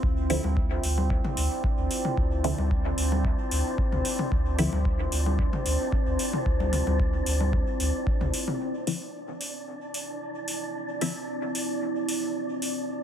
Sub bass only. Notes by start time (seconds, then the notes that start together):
0.03 D2
0.44 D2
0.84 D2
1.37 D2
1.78 D2
2.17 D2
2.58 D2
2.98 D2
3.51 D2
3.92 D2
4.32 D2
4.73 D2
5.12 D2
5.66 D2
6.07 D2
6.46 D2
6.87 D2
7.26 D2
7.80 D2
8.21 D2